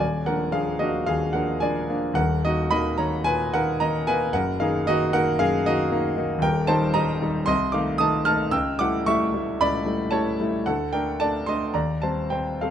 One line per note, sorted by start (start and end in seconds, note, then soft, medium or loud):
0.00 0.26 D#1 medium
0.00 0.24 D#2 medium
0.00 0.26 D5 medium
0.00 0.27 G#5 medium
0.26 0.51 F3 soft
0.26 0.51 A#3 medium
0.26 0.52 D4 medium
0.26 0.52 A#4 medium
0.26 0.54 F#5 medium
0.52 0.78 F3 medium
0.52 0.78 A#3 medium
0.52 0.79 D4 medium
0.52 0.79 G#4 medium
0.52 0.80 F5 medium
0.79 1.05 F3 soft
0.79 1.05 A#3 medium
0.79 1.05 D4 medium
0.79 1.06 F#4 medium
0.79 1.07 D#5 medium
1.06 1.33 D#2 medium
1.06 1.33 G#4 medium
1.06 1.34 F5 loud
1.33 1.58 F3 medium
1.33 1.59 A#3 medium
1.33 1.59 D4 medium
1.33 1.60 A#4 medium
1.33 1.61 F#5 medium
1.60 1.86 F3 medium
1.60 1.86 A#3 soft
1.60 1.86 D4 medium
1.60 2.12 D5 medium
1.60 2.15 G#5 loud
1.89 2.14 F3 medium
1.89 2.14 A#3 medium
1.89 2.14 D4 medium
2.13 2.42 D#1 medium
2.13 2.41 D#2 medium
2.13 2.42 A#4 medium
2.13 2.43 F#5 loud
2.45 2.69 D#3 medium
2.45 2.69 A#3 medium
2.45 2.70 D#4 medium
2.45 2.71 F#4 medium
2.45 2.70 D#5 loud
2.71 2.96 D#3 medium
2.71 2.96 A#3 medium
2.71 2.96 D#4 medium
2.71 2.97 D#5 loud
2.71 2.98 B5 loud
2.98 3.23 D#3 medium
2.98 3.23 A#3 medium
2.98 3.23 D#4 medium
2.98 3.24 C#5 medium
2.98 3.25 A#5 medium
3.24 3.52 A#2 medium
3.24 3.51 B4 medium
3.24 3.52 G#5 loud
3.54 3.78 D#3 medium
3.54 3.78 A#3 medium
3.54 3.79 D#4 medium
3.54 3.79 A#4 medium
3.54 3.80 F#5 loud
3.80 4.04 D#3 medium
3.80 4.05 A#3 medium
3.80 4.05 D#4 medium
3.80 4.05 D#5 medium
3.80 4.07 A#5 loud
4.07 4.31 D#3 medium
4.07 4.32 A#3 medium
4.07 4.32 D#4 medium
4.07 4.32 B4 medium
4.07 4.34 G#5 loud
4.33 4.59 F#1 medium
4.33 4.60 F#2 medium
4.33 4.59 A#4 medium
4.33 4.60 F#5 loud
4.60 4.84 D#3 medium
4.60 4.84 A#3 medium
4.60 4.84 D#4 medium
4.60 4.85 G#4 medium
4.60 4.86 F5 loud
4.87 5.11 D#3 medium
4.87 5.11 A#3 medium
4.87 5.11 D#4 medium
4.87 5.12 F#4 loud
4.87 5.13 D#5 loud
5.13 5.36 D#3 medium
5.13 5.37 A#3 medium
5.13 5.37 D#4 medium
5.13 5.37 A#4 medium
5.13 5.39 F#5 loud
5.39 5.64 F#2 medium
5.39 5.63 G#4 loud
5.39 5.65 F5 loud
5.66 5.89 D#3 medium
5.66 5.89 A#3 medium
5.66 5.90 D#4 medium
5.66 6.40 F#4 medium
5.66 6.44 D#5 loud
5.92 6.15 D#3 medium
5.92 6.15 A#3 medium
5.92 6.15 D#4 medium
6.17 6.40 D#3 medium
6.17 6.41 A#3 medium
6.17 6.41 D#4 medium
6.38 6.68 D#1 medium
6.38 6.66 D#2 medium
6.38 6.69 G5 loud
6.43 6.67 A#4 medium
6.67 6.93 D#3 medium
6.67 6.93 G3 medium
6.67 6.93 D#4 medium
6.67 6.93 C5 medium
6.67 6.95 A5 loud
6.94 7.19 D#3 medium
6.94 7.19 G3 medium
6.94 7.19 D#4 medium
6.94 7.44 D#5 medium
6.94 7.47 A#5 loud
7.21 7.45 D#3 medium
7.21 7.46 G3 medium
7.21 7.46 D#4 medium
7.46 7.73 C2 medium
7.46 7.72 D#5 loud
7.46 7.73 C6 loud
7.72 7.97 D#3 medium
7.72 7.97 A3 medium
7.72 7.97 D#4 medium
7.72 7.98 F5 medium
7.72 7.99 D6 loud
7.98 8.23 D#3 medium
7.98 8.23 A3 medium
7.98 8.24 D#4 medium
7.98 8.25 A5 loud
7.98 8.25 D#6 loud
8.25 8.50 D#3 medium
8.25 8.50 A3 medium
8.25 8.50 D#4 medium
8.25 8.51 A5 loud
8.25 8.52 F6 loud
8.51 8.78 C#2 medium
8.51 8.77 G5 medium
8.51 8.79 E6 loud
8.79 9.04 G3 medium
8.79 9.04 A3 medium
8.79 9.04 E4 medium
8.79 9.05 F#5 medium
8.79 9.06 D6 loud
9.06 9.31 G3 medium
9.06 9.31 A3 medium
9.06 9.32 E4 medium
9.06 9.57 E5 medium
9.06 9.60 C#6 loud
9.33 9.57 G3 medium
9.33 9.58 A3 medium
9.33 9.58 E4 medium
9.61 9.86 C#2 medium
9.61 10.10 D5 loud
9.61 10.13 B5 loud
9.85 10.10 G3 medium
9.85 10.10 A3 medium
9.85 10.10 E4 medium
10.11 10.36 G3 medium
10.11 10.36 A3 medium
10.11 10.37 E4 medium
10.11 10.62 C#5 medium
10.11 10.65 A5 loud
10.40 10.64 G3 medium
10.40 10.64 A3 medium
10.40 10.64 E4 medium
10.66 10.93 D2 medium
10.66 10.92 A4 medium
10.66 10.93 F#5 loud
10.93 11.18 A3 soft
10.93 11.18 D4 medium
10.93 11.19 A#4 medium
10.93 11.20 G5 loud
11.20 11.45 A3 medium
11.20 11.46 D4 medium
11.20 11.46 D5 medium
11.20 11.48 A5 loud
11.46 11.72 A3 medium
11.46 11.72 D4 medium
11.46 11.73 D#5 medium
11.46 11.74 C6 loud
11.74 12.01 D#2 medium
11.74 12.00 D5 medium
11.74 12.02 A#5 medium
12.02 12.28 G3 soft
12.02 12.28 C4 medium
12.02 12.29 C5 medium
12.02 12.30 A5 medium
12.30 12.57 G3 soft
12.30 12.58 C4 medium
12.30 12.58 C5 medium
12.30 12.59 G5 medium
12.61 12.70 G3 soft
12.61 12.70 C4 medium
12.61 12.70 A4 medium
12.61 12.70 F5 medium